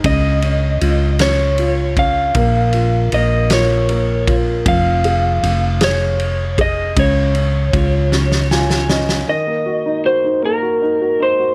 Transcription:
<<
  \new Staff \with { instrumentName = "Electric slide guitar" } { \time 6/8 \key des \major \tempo 4. = 52 ees''4. des''4 f''8~ | f''4 ees''8 des''4 r8 | f''4. des''4 ees''8 | des''2~ des''8 r8 |
ees''4 c''8 bes'4 c''8 | }
  \new Staff \with { instrumentName = "Upright piano" } { \time 6/8 \key des \major des8 des'8 f'8 des'8 f'8 des'8 | bes8 f'8 bes8 f'8 bes8 f'8 | f8 aes'4 aes'4 aes'8 | des8 des'8 f'8 des'8 <f' aes''>8 <des' ees''>8 |
ees16 bes16 ges'16 ees'16 ges'16 ees'16 bes16 ges'16 ees'16 ges'16 ees'16 ges'16 | }
  \new Staff \with { instrumentName = "Fingered electric bass" } { \clef bass \time 6/8 \key des \major des,4 des,2 | bes,,4 bes,,2 | f,,4 f,,2 | des,4 des,2 |
r2. | }
  \new DrumStaff \with { instrumentName = "Drums" } \drummode { \time 6/8 <bd cymr>8 cymr8 cymr8 <cymr sn>8 cymr8 <bd cymr>8 | <bd cymr>8 cymr8 cymr8 <cymr sn>8 cymr8 <bd cymr>8 | <bd cymr>8 cymr8 cymr8 <cymr sn>8 cymr8 <bd cymr>8 | <bd cymr>8 cymr8 <bd cymr>8 sn16 sn16 sn16 sn16 sn16 sn16 |
r4. r4. | }
>>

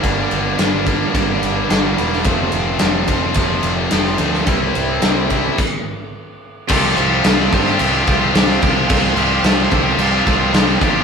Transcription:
<<
  \new Staff \with { instrumentName = "String section" } { \time 4/4 \key c \dorian \tempo 4 = 108 r1 | r1 | r1 | <g' c'' f'' c'''>1~ |
<g' c'' f'' c'''>1 | }
  \new Staff \with { instrumentName = "Distorted electric guitar" } { \time 4/4 \key c \dorian <g, d g bes d'>4 <g, d g bes d'>8 <g, d g bes d'>8 <g, d g bes d'>4 <g, d g bes d'>8 <g, d g bes d'>8 | <f, c f a c'>4 <f, c f a c'>8 <f, c f a c'>8 <f, c f a c'>4 <f, c f a c'>8 <f, c f a c'>8 | <c g c' e'>4 <c g c' e'>8 <c g c' e'>8 r2 | <c f c' f' g'>8 <f c' f' g'>16 <c' f' g'>8. <f c' f' g'>16 <c' f' g'>16 <c f c' f' g'>16 <c' f' g'>16 <f c' f' g'>16 <c' f' g'>16 <c f c' f' g'>8 <f c' f' g'>16 <c' f' g'>16 |
<c f c' f' g'>8 <f c' f' g'>16 <c' f' g'>8. <f c' f' g'>16 <c' f' g'>16 <c f c' f' g'>16 <c' f' g'>16 <f c' f' g'>16 <c' f' g'>16 <c f c' f' g'>8 <f c' f' g'>16 <c' f' g'>16 | }
  \new Staff \with { instrumentName = "Overdriven electric guitar" } { \time 4/4 \key c \dorian <g, d g>4 <g, d g>8 <g, d g>8 <g, d g>4 <g, d g>8 <g, d g>8 | <f, c f>4 <f, c f>8 <f, c f>8 <f, c f>4 <f, c f>8 <f, c f>8 | <c g c'>4 <c g c'>8 <c g c'>8 r2 | <c f c' f' g'>8 <f c' f' g'>16 <c' f' g'>16 <c f c' f' g'>8 <f c' f' g'>16 <c' f' g'>8 <c' f' g'>16 <f c' f' g'>16 <c' f' g'>8 <c f c' f' g'>16 <f c' f' g'>16 <c' f' g'>16 |
<c f c' f' g'>8 <f c' f' g'>16 <c' f' g'>16 <c f c' f' g'>8 <f c' f' g'>16 <c' f' g'>8 <c' f' g'>16 <f c' f' g'>16 <c' f' g'>8 <c f c' f' g'>16 <f c' f' g'>16 <c' f' g'>16 | }
  \new Staff \with { instrumentName = "Picked electric bass" } { \clef bass \time 4/4 \key c \dorian g,,8 g,,8 g,,4 g,,8 g,,8 g,,8 e,,8 | f,,8 f,,8 f,,8 f,,8 f,,8 f,,8 f,,8 d,8 | c,8 c,8 c,4 r2 | c,8 c,8 c,8 g,8 c,8 c,8 c,8 c,8 |
c,8 c,8 c,8 c,8 c,8 c,8 c,8 a,,8 | }
  \new DrumStaff \with { instrumentName = "Drums" } \drummode { \time 4/4 <bd cymr>8 cymr8 <cymr sn>8 <bd cymr>8 <bd cymr>8 cymr8 <cymr sn>8 cymr16 sn16 | <bd cymr>8 cymr8 <cymr sn>8 <bd cymr>8 <bd cymr>8 cymr8 <cymr sn>16 sn16 cymr16 sn16 | <bd cymr>8 cymr8 <cymr sn>8 <bd cymr>8 <cymc bd>4 r4 | <cymc bd>8 cymc8 <cymc sn>8 <cymc bd>16 sn16 cymc8 <cymc bd>8 <cymc sn>16 sn16 <cymc bd>8 |
<cymc bd>8 cymc8 <cymc sn>8 <cymc bd>8 cymc8 <cymc bd>8 <cymc sn>16 sn16 <cymc bd>8 | }
>>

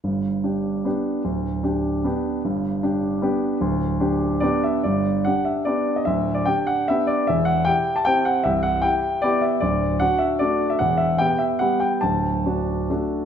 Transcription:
\new Staff \with { instrumentName = "Grand piano" } { \time 3/4 \key g \major \tempo 4 = 149 << { r2. | r2. | r2. | r2 d''8 e''8 |
d''4 fis''8 e''8 d''8. ees''16 | e''8. d''16 g''8 fis''8 e''8 d''8 | e''8 fis''8 g''8. a''16 g''8 fis''8 | e''8 fis''8 g''4 d''8 e''8 |
d''4 fis''8 e''8 d''8. e''16 | fis''8 e''8 g''8 e''8 fis''8 g''8 | a''2. | } \\ { <g,, g,>4 <d' g'>4 <b d' g'>4 | <d,, d,>4 <d' g'>4 <b d' g'>4 | <g,, g,>4 <d' g'>4 <b d' g'>4 | <d,, d,>4 <d' g'>4 <b d' g'>4 |
<g,, g,>4 <d' g'>4 <b d' g'>4 | <d,, d,>4 <d' g'>4 <b d' g'>4 | <e,, e,>4 <e' g'>4 <c' e' g'>4 | <c,, c,>4 <e' g'>4 <b e' g'>4 |
<d,, d,>4 <d' fis'>4 <a d' fis'>4 | <e,, e,>4 <b g'>4 <g b g'>4 | <d,, d,>4 <d' fis'>4 <a d' fis'>4 | } >> }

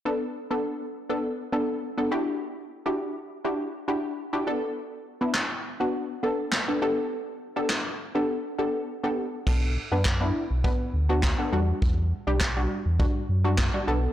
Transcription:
<<
  \new Staff \with { instrumentName = "Synth pluck" } { \time 4/4 \key b \minor \tempo 4 = 102 <b d' a'>8 r16 <b d' a'>8 r8 <b d' a'>8 r16 <b d' a'>8 r16 <b d' a'>16 <d' e' fis' g'>8~ | <d' e' fis' g'>8 r16 <d' e' fis' g'>8 r8 <d' e' fis' g'>8 r16 <d' e' fis' g'>8 r16 <d' e' fis' g'>16 <b d' a'>8~ | <b d' a'>8 r16 <b d' e'>8 r8 <b d' fis'>8 r16 <b d' a'>8 r16 <b d' a'>16 <b d' g' a'>8~ | <b d' g' a'>8 r16 <b d' g' a'>8 r8 <b d' g' a'>8 r16 <b d' g' a'>8 r16 <b d' g' a'>8 r16 |
<b d' a'>8 r16 <b d' b'>16 r16 <b d' e'>8 r16 <b d' b'>8 r16 <b d' fis'>16 r16 <b d' a'>16 <g d' fis'>8~ | <g d' fis'>8 r16 <g d' g'>16 r16 <g d' fis'>8 r16 <g d' fis'>8 r16 <g d' fis'>16 r16 <g d' fis'>16 <b d' a'>8 | }
  \new Staff \with { instrumentName = "Sub bass" } { \clef bass \time 4/4 \key b \minor r1 | r1 | r1 | r1 |
b,,8. fis,4 b,,8 r16 d,4 e,8 | e,8. b,,4 e,8 r16 fis,4 b,,8 | }
  \new DrumStaff \with { instrumentName = "Drums" } \drummode { \time 4/4 r4 r4 r4 r4 | r4 r4 r4 r4 | r4 <hc sn>4 r4 <hc sn>4 | r4 <hc sn>4 r4 r4 |
<cymc bd>4 <hc bd sn>4 bd4 <hc bd sn>4 | bd4 <hc bd sn>4 bd4 <hc bd sn>4 | }
>>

